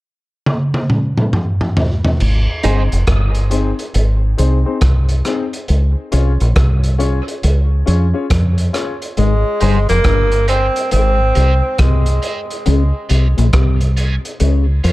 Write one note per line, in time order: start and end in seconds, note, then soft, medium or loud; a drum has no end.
0.46 high tom medium
0.74 high tom medium
0.90 mid tom medium
1.18 mid tom medium
1.33 mid tom medium
1.61 mid tom medium
1.77 floor tom medium
2.05 floor tom medium
2.20 2.46 G#1 medium
2.20 crash medium
2.63 2.89 G1 loud
2.63 2.82 C4 medium
2.63 2.82 D#4 medium
2.63 2.81 D#4 medium
2.63 2.82 G#4 medium
2.63 2.83 C5 medium
2.63 2.82 C5 medium
2.63 closed hi-hat medium
2.92 3.06 F1 medium
2.92 closed hi-hat soft
3.07 3.72 G1 medium
3.07 kick loud
3.07 cross-stick loud
3.07 closed hi-hat medium
3.35 closed hi-hat medium
3.50 3.69 C4 medium
3.50 3.69 D#4 medium
3.50 3.69 G#4 medium
3.50 3.70 C5 medium
3.50 closed hi-hat medium
3.79 3.85 G#4 soft
3.79 3.85 C5 soft
3.79 closed hi-hat soft
3.94 4.34 G#1 medium
3.94 closed hi-hat medium
4.37 4.64 C2 medium
4.37 4.56 C4 medium
4.37 4.56 D#4 medium
4.37 4.57 G#4 medium
4.37 4.57 C5 medium
4.37 closed hi-hat medium
4.65 4.76 C4 medium
4.65 4.76 D#4 medium
4.65 4.76 G#4 medium
4.65 4.77 C5 medium
4.81 5.21 C2 medium
4.81 kick loud
4.81 cross-stick medium
4.81 closed hi-hat loud
5.09 closed hi-hat medium
5.25 5.43 C4 medium
5.25 5.44 D#4 medium
5.25 5.44 G#4 medium
5.25 5.44 C5 medium
5.25 cross-stick medium
5.25 closed hi-hat medium
5.53 closed hi-hat soft
5.68 5.94 C#2 loud
5.68 closed hi-hat medium
6.12 6.38 C2 medium
6.12 6.30 C#4 medium
6.12 6.31 F4 medium
6.12 6.31 G#4 medium
6.12 6.31 C#5 medium
6.12 closed hi-hat medium
6.40 6.55 A#1 medium
6.40 closed hi-hat soft
6.56 7.20 C2 medium
6.56 kick loud
6.56 cross-stick loud
6.56 closed hi-hat medium
6.84 closed hi-hat medium
6.99 7.17 C#4 medium
6.99 7.18 F4 medium
6.99 7.18 G#4 medium
6.99 7.18 C#5 loud
6.99 closed hi-hat medium
7.27 7.33 G#4 soft
7.27 7.33 C#5 soft
7.27 closed hi-hat soft
7.43 7.83 C#2 medium
7.43 closed hi-hat medium
7.86 8.12 F2 medium
7.86 8.05 C#4 medium
7.86 8.05 F4 medium
7.86 8.05 G#4 medium
7.86 8.05 C#5 medium
7.86 closed hi-hat medium
8.14 8.24 C#4 medium
8.14 8.25 F4 medium
8.14 8.25 G#4 medium
8.14 8.25 C#5 medium
8.30 8.70 F2 loud
8.30 kick loud
8.30 cross-stick medium
8.30 closed hi-hat loud
8.58 closed hi-hat medium
8.73 8.92 C#4 medium
8.73 8.92 F4 medium
8.73 8.92 G#4 medium
8.73 8.92 C#5 medium
8.73 cross-stick medium
8.73 closed hi-hat medium
9.02 closed hi-hat soft
9.17 9.43 G#1 loud
9.17 9.34 G#2 medium
9.17 9.85 G#3 medium
9.17 closed hi-hat medium
9.60 9.86 G1 loud
9.60 9.78 G2 medium
9.60 9.79 C4 medium
9.60 9.79 D#4 medium
9.60 9.78 D#4 medium
9.60 9.79 G#4 medium
9.60 9.78 G#4 medium
9.60 9.79 C5 medium
9.60 9.79 C5 loud
9.60 closed hi-hat medium
9.89 10.04 F1 medium
9.89 9.98 F2 medium
9.89 10.44 A#3 loud
9.89 closed hi-hat medium
10.04 10.69 G1 medium
10.04 10.31 G2 medium
10.04 kick loud
10.04 cross-stick loud
10.04 closed hi-hat medium
10.32 muted clean electric guitar stroke soft
10.32 closed hi-hat medium
10.47 10.66 C4 medium
10.47 10.89 C4 loud
10.47 10.66 D#4 medium
10.47 10.65 D#4 medium
10.47 10.66 G#4 medium
10.47 10.67 C5 medium
10.47 10.66 C5 medium
10.47 closed hi-hat medium
10.76 closed hi-hat soft
10.91 11.31 G#1 medium
10.91 11.18 G#2 medium
10.91 11.81 C4 loud
10.91 closed hi-hat medium
11.34 11.61 C2 medium
11.34 11.52 C3 medium
11.34 11.53 C4 medium
11.34 11.53 D#4 medium
11.34 11.52 D#4 medium
11.34 11.53 G#4 medium
11.34 11.54 C5 medium
11.34 11.53 C5 medium
11.34 closed hi-hat medium
11.63 11.73 C4 medium
11.63 11.73 D#4 medium
11.63 11.73 G#4 medium
11.63 11.74 C5 medium
11.78 12.18 C2 medium
11.78 12.05 C3 medium
11.78 12.51 G#3 medium
11.78 kick loud
11.78 cross-stick medium
11.78 closed hi-hat loud
12.06 muted clean electric guitar stroke soft
12.06 closed hi-hat medium
12.22 12.40 C4 medium
12.22 12.39 D#4 medium
12.22 12.41 D#4 medium
12.22 12.41 G#4 medium
12.22 12.40 G#4 medium
12.22 12.41 C5 medium
12.22 12.40 C5 medium
12.22 closed hi-hat medium
12.50 closed hi-hat soft
12.66 12.91 C#2 loud
12.66 12.82 C#3 medium
12.66 closed hi-hat medium
13.09 13.35 C2 medium
13.09 13.26 C3 medium
13.09 13.27 C#4 medium
13.09 13.26 F4 medium
13.09 13.28 F4 medium
13.09 13.28 G#4 medium
13.09 13.27 G#4 medium
13.09 13.28 C#5 medium
13.09 13.27 C#5 loud
13.09 closed hi-hat medium
13.37 13.52 A#1 medium
13.37 13.47 A#2 medium
13.37 closed hi-hat soft
13.53 14.17 C2 loud
13.53 13.79 C3 medium
13.53 kick loud
13.53 cross-stick loud
13.53 closed hi-hat medium
13.81 muted clean electric guitar stroke soft
13.81 closed hi-hat medium
13.96 14.15 C#4 medium
13.96 14.15 F4 medium
13.96 14.14 F4 medium
13.96 14.15 G#4 medium
13.96 14.14 G#4 medium
13.96 14.15 C#5 medium
13.96 14.15 C#5 loud
13.96 closed hi-hat medium
14.24 14.30 G#4 soft
14.24 14.30 C#5 soft
14.24 closed hi-hat soft
14.40 14.79 C#2 medium
14.40 14.66 C#3 medium
14.40 closed hi-hat medium
14.83 14.92 F2 loud
14.83 14.92 F3 medium
14.83 14.92 C#4 medium
14.83 14.92 F4 medium
14.83 14.92 G#4 medium
14.83 14.92 C#5 medium
14.83 closed hi-hat medium